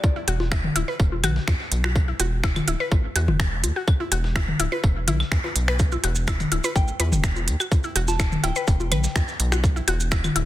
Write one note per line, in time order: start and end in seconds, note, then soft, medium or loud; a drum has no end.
0.00 0.16 D5 medium
0.00 kick loud
0.00 tambourine medium
0.00 downlifter medium
0.00 low bongo soft
0.16 0.18 E4 medium
0.28 0.69 E1 loud
0.28 0.30 F#4 loud
0.28 closed hi-hat loud
0.28 tambourine medium
0.40 snare soft
0.40 low bongo soft
0.52 0.54 E4 loud
0.52 finger snap loud
0.52 kick loud
0.52 snare loud
0.52 tambourine medium
0.64 mid tom loud
0.76 0.84 D1 medium
0.76 0.78 E4 loud
0.76 closed hi-hat medium
0.76 tambourine medium
0.76 low bongo soft
0.88 0.93 B4 loud
1.00 1.25 E1 loud
1.00 kick loud
1.00 tambourine medium
1.12 low bongo soft
1.24 1.39 B1 medium
1.24 1.26 F#4 loud
1.24 closed hi-hat loud
1.24 mid tom medium
1.24 tambourine medium
1.24 claves medium
1.36 snare medium
1.48 1.56 E2 medium
1.48 finger snap loud
1.48 kick loud
1.48 snare loud
1.48 tambourine medium
1.48 low bongo soft
1.60 snare soft
1.72 2.13 B1 medium
1.72 closed hi-hat loud
1.72 tambourine medium
1.84 1.86 F#4 medium
1.84 finger snap medium
1.84 low bongo soft
1.96 kick loud
1.96 tambourine medium
2.08 2.10 E4 medium
2.20 2.61 E1 medium
2.20 2.22 F#4 loud
2.20 closed hi-hat loud
2.20 tambourine medium
2.20 low bongo soft
2.44 2.46 E4 loud
2.44 finger snap medium
2.44 kick loud
2.44 snare loud
2.44 tambourine medium
2.56 closed hi-hat soft
2.56 mid tom loud
2.56 low bongo soft
2.56 claves medium
2.68 2.76 D1 medium
2.68 2.70 E4 loud
2.68 closed hi-hat loud
2.68 tambourine medium
2.80 2.85 B4 loud
2.92 3.07 A1 medium
2.92 kick loud
2.92 tambourine medium
2.92 low bongo soft
3.16 3.30 E2 medium
3.16 3.18 F#4 loud
3.16 closed hi-hat loud
3.16 tambourine medium
3.28 3.65 E1 loud
3.28 mid tom loud
3.28 low bongo soft
3.40 finger snap loud
3.40 kick loud
3.40 snare loud
3.40 tambourine medium
3.64 3.72 E2 loud
3.64 closed hi-hat loud
3.64 tambourine medium
3.64 low bongo soft
3.76 3.78 F#4 medium
3.88 kick loud
3.88 tambourine medium
3.88 claves medium
4.00 4.02 E4 medium
4.00 low bongo soft
4.12 4.53 E1 loud
4.12 4.14 F#4 loud
4.12 closed hi-hat loud
4.12 tambourine medium
4.24 snare soft
4.36 4.38 E4 loud
4.36 finger snap loud
4.36 kick loud
4.36 snare loud
4.36 tambourine medium
4.36 low bongo soft
4.48 mid tom medium
4.60 4.68 D1 medium
4.60 4.62 E4 loud
4.60 closed hi-hat loud
4.60 tambourine medium
4.72 4.77 B4 loud
4.72 low bongo soft
4.84 5.09 E1 loud
4.84 kick loud
4.84 tambourine medium
5.08 5.23 B1 medium
5.08 5.10 E4 loud
5.08 closed hi-hat medium
5.08 mid tom medium
5.08 tambourine medium
5.08 low bongo soft
5.20 snare medium
5.20 claves medium
5.32 5.40 E2 medium
5.32 finger snap loud
5.32 kick loud
5.32 snare loud
5.32 tambourine medium
5.44 5.46 B4 medium
5.44 snare soft
5.44 low bongo soft
5.56 5.97 B1 medium
5.56 closed hi-hat loud
5.56 tambourine medium
5.68 5.72 B4 loud
5.68 finger snap medium
5.79 kick loud
5.79 tambourine medium
5.79 maracas medium
5.92 5.94 E4 medium
5.92 low bongo soft
5.92 maracas soft
6.04 6.45 E1 loud
6.04 6.06 F#4 loud
6.04 closed hi-hat loud
6.04 tambourine medium
6.15 maracas medium
6.27 6.30 E4 loud
6.27 finger snap medium
6.27 kick loud
6.27 snare loud
6.27 tambourine medium
6.27 low bongo soft
6.27 claves medium
6.27 maracas medium
6.40 closed hi-hat soft
6.40 mid tom medium
6.40 maracas soft
6.52 6.60 D1 medium
6.52 6.54 E4 loud
6.52 closed hi-hat medium
6.52 tambourine medium
6.64 6.69 B4 loud
6.64 low bongo soft
6.64 maracas medium
6.76 6.91 A1 medium
6.76 6.87 G5 medium
6.76 kick loud
6.76 tambourine medium
6.76 maracas medium
6.88 maracas soft
7.00 7.14 E2 medium
7.00 7.02 B4 loud
7.00 closed hi-hat medium
7.00 tambourine medium
7.00 low bongo soft
7.12 7.49 E1 loud
7.12 mid tom medium
7.12 maracas medium
7.24 finger snap medium
7.24 kick loud
7.24 snare loud
7.24 tambourine medium
7.24 maracas medium
7.36 low bongo soft
7.36 maracas soft
7.48 7.56 E2 loud
7.48 closed hi-hat medium
7.48 tambourine medium
7.60 7.62 F#4 medium
7.60 claves medium
7.60 maracas medium
7.72 kick loud
7.72 tambourine medium
7.72 low bongo soft
7.72 maracas medium
7.84 7.86 E4 medium
7.84 maracas soft
7.96 8.37 E1 loud
7.96 7.98 F#4 loud
7.96 closed hi-hat medium
7.96 tambourine medium
8.08 8.19 A5 medium
8.08 snare soft
8.08 low bongo soft
8.08 maracas medium
8.20 8.22 E4 loud
8.20 finger snap medium
8.20 kick loud
8.20 snare loud
8.20 tambourine medium
8.20 maracas medium
8.32 mid tom medium
8.32 maracas soft
8.43 8.52 D1 medium
8.43 8.46 E4 loud
8.43 9.11 G5 medium
8.43 closed hi-hat medium
8.43 tambourine medium
8.43 low bongo soft
8.56 8.61 B4 loud
8.56 maracas medium
8.67 8.93 E1 loud
8.67 kick loud
8.67 tambourine medium
8.67 maracas medium
8.80 low bongo soft
8.80 maracas soft
8.92 9.07 B1 medium
8.92 8.94 B4 loud
8.92 closed hi-hat medium
8.92 mid tom medium
8.92 tambourine medium
8.92 claves medium
9.04 snare medium
9.04 maracas medium
9.16 9.24 E2 medium
9.16 finger snap medium
9.16 kick loud
9.16 snare loud
9.16 tambourine medium
9.16 low bongo soft
9.16 maracas medium
9.28 snare soft
9.28 maracas soft
9.40 9.81 B1 medium
9.40 closed hi-hat medium
9.40 tambourine medium
9.52 9.54 F#4 medium
9.52 finger snap medium
9.52 low bongo soft
9.52 maracas medium
9.64 kick loud
9.64 tambourine medium
9.64 maracas medium
9.76 9.78 E4 medium
9.76 maracas soft
9.88 10.29 E1 loud
9.88 9.90 F#4 loud
9.88 closed hi-hat medium
9.88 tambourine medium
9.88 low bongo soft
10.00 maracas medium
10.11 10.14 E4 loud
10.11 finger snap medium
10.11 kick loud
10.11 snare loud
10.11 tambourine medium
10.11 maracas medium
10.24 closed hi-hat soft
10.24 mid tom loud
10.24 low bongo soft
10.24 claves medium
10.24 maracas soft
10.36 10.44 D1 medium
10.36 10.38 E4 loud
10.36 closed hi-hat medium
10.36 tambourine medium